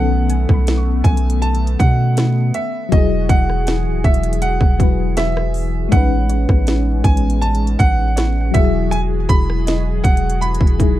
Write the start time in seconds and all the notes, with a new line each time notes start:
Already playing: B1 D#3 A3 B3 C#4 A4 F#5
0.30 G#5, closed hi-hat
0.49 B1, kick, cross-stick
0.54 B5
0.67 snare, closed hi-hat
0.78 C#6
1.04 B1 G#5, kick, closed hi-hat
1.17 closed hi-hat
1.30 closed hi-hat
1.42 A5, closed hi-hat
1.55 closed hi-hat
1.67 closed hi-hat
1.79 B2 F#5, kick, closed hi-hat
2.17 snare, closed hi-hat
2.54 E5, closed hi-hat
2.89 E1 E3 F#3 F#4 G#4 D#5, kick, closed hi-hat
2.94 E4 G#4
3.29 E1 F#5, kick, closed hi-hat
3.50 cross-stick
3.67 F#5, snare, closed hi-hat
3.86 D#1
4.04 E1 E5, kick, closed hi-hat
4.14 closed hi-hat
4.23 closed hi-hat
4.33 closed hi-hat
4.42 F#5, closed hi-hat
4.61 E1, kick
4.78 F#3 E4 F#4, kick, closed hi-hat
4.82 B4
5.17 E5, snare, closed hi-hat
5.37 cross-stick
5.54 open hi-hat
5.89 A1 G#3 B3 C#4 F#5, kick, closed hi-hat
5.94 D#4 B4
6.29 C#5, closed hi-hat
6.49 A1, kick, cross-stick
6.67 snare, closed hi-hat
7.04 A1 G#5, kick, closed hi-hat
7.17 closed hi-hat
7.30 closed hi-hat
7.42 A5, closed hi-hat
7.55 closed hi-hat
7.67 closed hi-hat
7.79 A1 F#5, kick, closed hi-hat
8.16 C#5, snare, closed hi-hat
8.41 F#5
8.51 E1 E3 F#3 F#4 G#4 E5, kick, closed hi-hat
8.56 E4 G#4
8.64 G#5
8.91 G#5, closed hi-hat
9.29 E1 B5, kick, closed hi-hat
9.50 cross-stick
9.67 D#5, snare, closed hi-hat
10.04 E1 F#5, kick, closed hi-hat
10.17 closed hi-hat
10.30 closed hi-hat
10.41 B5, closed hi-hat
10.55 closed hi-hat
10.61 E1, kick
10.67 closed hi-hat
10.78 F#3 D#4 E4, kick, closed hi-hat
10.82 G#4